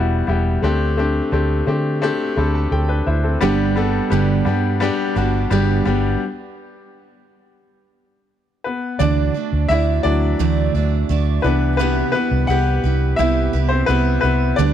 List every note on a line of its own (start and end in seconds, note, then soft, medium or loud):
0.00 0.21 E1 medium
0.00 0.27 G3 medium
0.00 0.28 B3 medium
0.00 0.28 E4 medium
0.00 0.65 F#4 loud
0.00 0.29 G4 medium
0.27 0.56 E1 medium
0.27 0.53 G3 medium
0.27 0.53 B3 medium
0.27 0.54 E4 medium
0.27 0.54 G4 medium
0.62 1.20 D2 medium
0.62 1.64 D3 medium
0.62 0.88 A3 medium
0.62 0.89 C4 medium
0.62 0.89 D4 medium
0.62 0.89 G4 loud
0.97 1.23 A3 medium
0.97 1.23 C4 medium
0.97 1.24 D4 medium
0.97 1.24 G4 medium
1.32 1.61 D2 medium
1.32 1.58 A3 medium
1.32 1.58 C4 medium
1.32 1.58 D4 medium
1.32 1.58 G4 medium
1.66 2.10 D3 medium
1.66 1.92 A3 medium
1.66 1.93 C4 medium
1.66 1.93 D4 medium
1.66 1.93 G4 medium
2.02 2.28 A3 loud
2.02 2.28 C4 medium
2.02 2.28 D4 medium
2.02 2.28 G4 loud
2.36 2.66 D2 medium
2.36 2.62 A3 medium
2.36 2.63 C4 medium
2.36 2.63 D4 medium
2.36 2.63 A4 medium
2.36 2.54 B5 medium
2.55 2.71 A5 medium
2.72 3.00 D2 medium
2.72 2.89 C4 soft
2.72 2.89 A4 medium
2.72 3.05 G5 medium
2.89 3.06 D4 soft
2.89 3.06 B4 medium
3.07 3.36 D2 medium
3.07 3.24 E4 medium
3.07 3.23 C5 medium
3.07 3.39 E5 medium
3.24 3.58 C4 medium
3.24 3.57 A4 medium
3.41 3.99 G1 loud
3.41 3.76 G2 medium
3.41 4.42 G2 medium
3.41 3.77 D3 medium
3.41 3.67 G3 medium
3.41 3.77 G3 medium
3.41 3.67 B3 medium
3.41 3.77 B3 loud
3.41 3.67 D4 medium
3.41 3.76 D4 medium
3.41 3.68 G4 loud
3.41 3.75 G4 medium
3.76 4.02 G3 medium
3.76 4.11 G3 soft
3.76 4.02 B3 medium
3.76 4.12 B3 soft
3.76 4.02 D4 medium
3.76 4.12 D4 soft
3.76 4.11 G4 medium
3.76 4.02 A4 medium
4.10 4.40 G1 loud
4.10 4.47 G2 medium
4.10 4.47 D3 medium
4.10 4.36 G3 medium
4.10 4.47 G3 medium
4.10 4.37 B3 medium
4.10 4.47 B3 medium
4.10 4.37 D4 medium
4.10 4.46 D4 medium
4.10 4.37 G4 medium
4.10 4.45 G4 medium
4.45 4.89 G2 medium
4.45 4.71 G3 medium
4.45 4.71 B3 medium
4.45 4.81 B3 soft
4.45 4.72 D4 medium
4.45 4.82 D4 soft
4.45 4.81 G4 soft
4.45 4.72 G4 medium
4.80 5.06 G3 loud
4.80 5.16 G3 medium
4.80 5.07 B3 medium
4.80 5.17 B3 medium
4.80 5.07 D4 loud
4.80 5.16 D4 medium
4.80 5.07 G4 loud
4.80 5.15 G4 medium
5.16 5.45 G1 medium
5.16 5.41 G3 medium
5.16 5.51 G3 soft
5.16 5.42 B3 medium
5.16 5.51 B3 medium
5.16 5.42 D4 medium
5.16 5.51 D4 medium
5.16 5.42 F#4 medium
5.16 5.51 G4 medium
5.50 5.80 G1 medium
5.50 5.86 G2 medium
5.50 5.86 D3 medium
5.50 5.76 G3 medium
5.50 5.86 G3 medium
5.50 5.77 B3 medium
5.50 5.86 B3 medium
5.50 5.77 D4 medium
5.50 5.85 D4 medium
5.50 5.77 G4 loud
5.50 5.84 G4 medium
5.85 6.15 G1 medium
5.85 6.11 G3 medium
5.85 6.22 G3 soft
5.85 6.11 B3 medium
5.85 6.22 B3 medium
5.85 6.21 D4 soft
5.85 6.12 D4 medium
5.85 6.21 G4 medium
5.85 6.12 G4 medium
8.64 8.98 B3 medium
8.64 9.01 B4 medium
8.99 9.29 D2 loud
8.99 9.35 D3 medium
8.99 9.35 E3 medium
8.99 9.35 A3 medium
8.99 9.35 D4 medium
8.99 9.67 D4 medium
8.99 9.34 F#4 loud
8.99 9.65 D5 medium
8.99 9.33 D5 medium
9.34 9.68 A3 soft
9.34 9.69 D4 medium
9.34 9.70 F#4 medium
9.34 9.70 D5 medium
9.53 9.67 D2 medium
9.69 9.98 D2 loud
9.69 10.04 A3 medium
9.69 10.05 D4 medium
9.69 10.03 E4 medium
9.69 10.04 F#4 medium
9.69 10.03 D5 medium
9.69 10.05 E5 medium
10.03 10.33 D2 loud
10.03 11.05 E3 soft
10.03 11.06 F#3 medium
10.03 10.39 A3 soft
10.03 11.41 D4 medium
10.03 10.39 D4 soft
10.03 10.40 F#4 soft
10.03 11.48 D5 medium
10.03 10.39 D5 medium
10.39 10.68 D2 loud
10.39 10.74 D3 medium
10.39 10.75 E3 medium
10.39 10.75 A3 medium
10.39 10.75 D4 medium
10.39 10.74 F#4 medium
10.39 10.73 D5 medium
10.74 11.03 D2 medium
10.74 11.08 A3 soft
10.74 11.09 D4 medium
10.74 11.10 F#4 medium
10.74 11.09 D5 medium
11.09 11.38 D2 loud
11.09 11.44 A3 medium
11.09 11.45 D4 medium
11.09 11.45 F#4 medium
11.09 11.44 D5 medium
11.42 12.02 C2 medium
11.42 14.19 E3 medium
11.42 11.77 B3 medium
11.42 14.20 D4 medium
11.42 11.80 G4 medium
11.42 11.76 B4 medium
11.42 11.79 B4 medium
11.47 11.79 E4 medium
11.77 12.14 C3 medium
11.77 12.14 B3 medium
11.77 12.12 B3 medium
11.77 12.15 E4 medium
11.77 12.14 G4 loud
11.77 12.10 B4 medium
11.77 12.13 B4 loud
12.12 12.47 B3 medium
12.12 12.49 G4 medium
12.12 12.49 B4 medium
12.17 12.48 E4 soft
12.31 12.46 C2 medium
12.47 12.78 C2 loud
12.47 12.84 B3 medium
12.47 12.84 E4 medium
12.47 12.84 G4 medium
12.47 13.15 G4 medium
12.47 12.82 B4 medium
12.47 13.20 F#5 loud
12.84 13.12 C2 loud
12.84 13.18 E4 soft
12.84 13.19 G4 medium
12.84 13.19 B4 medium
13.16 13.48 C2 loud
13.16 13.54 C3 medium
13.16 13.54 B3 medium
13.16 13.68 E4 medium
13.16 13.54 E4 medium
13.16 13.53 G4 medium
13.16 13.66 E5 medium
13.20 13.52 B4 medium
13.53 13.82 C2 medium
13.53 13.88 E4 medium
13.53 13.89 G4 medium
13.53 13.88 B4 medium
13.69 13.77 C4 medium
13.69 13.74 C5 medium
13.86 14.17 C2 loud
13.86 14.23 B3 medium
13.86 14.22 B3 medium
13.86 14.24 E4 medium
13.86 14.24 G4 medium
13.86 14.19 B4 medium
13.91 14.22 B4 medium
14.21 14.52 C2 medium
14.21 14.56 B3 medium
14.21 14.59 G4 medium
14.21 14.58 B4 medium
14.26 14.59 E4 soft
14.56 14.73 D2 loud
14.56 14.73 D3 loud
14.56 14.73 G3 medium
14.56 14.73 A3 loud
14.56 14.73 D4 medium
14.56 14.73 D4 loud
14.56 14.73 G4 loud
14.56 14.73 B4 loud
14.56 14.73 D5 medium